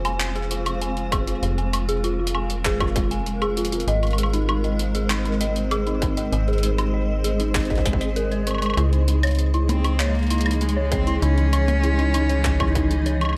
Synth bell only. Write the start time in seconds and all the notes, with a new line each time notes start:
0.05 G#5
0.36 G#4
0.51 F4
0.66 F4
0.81 G#5
1.12 G#4
1.27 F4
1.43 F4
1.58 G#5
1.89 G#4
2.04 F4
2.19 F4
2.35 G#5
2.65 G#4
2.80 F4
2.96 F4
3.11 G#5
3.42 G#4
3.57 F4
3.72 F4
3.88 D#5
4.18 G#4
4.34 D#4
4.49 D#4
4.64 D#5
4.95 G#4
5.10 D#4
5.25 D#4
5.41 D#5
5.71 G#4
5.87 D#4
6.02 D#4
6.17 D#5
6.48 G#4
6.63 D#4
6.78 D#4
6.94 D#5
7.24 G#4
7.40 D#4
7.55 D#4
7.70 D#5
8.01 D#5
8.16 A#4
8.32 C5
8.47 A#4
8.77 E4
8.93 D#4
9.08 D#4
9.23 C#5
9.54 E4
9.69 D#4
9.85 D#4
10.00 C#5
10.31 E4
10.46 D#4
10.61 D#4
10.76 C#5
11.07 E4
11.22 D#4
11.38 D#4
11.53 C#5
11.84 E4
11.99 D#4
12.14 D#4
12.29 C#5
12.60 E4
12.75 D#4
12.91 D#4
13.06 C#5